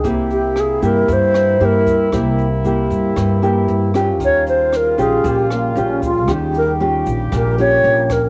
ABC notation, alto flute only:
X:1
M:4/4
L:1/8
Q:1/4=116
K:Cphr
V:1 name="Alto flute"
z G A B c2 B2 | z8 | d c B A G B, D F | G B z2 B d2 B |]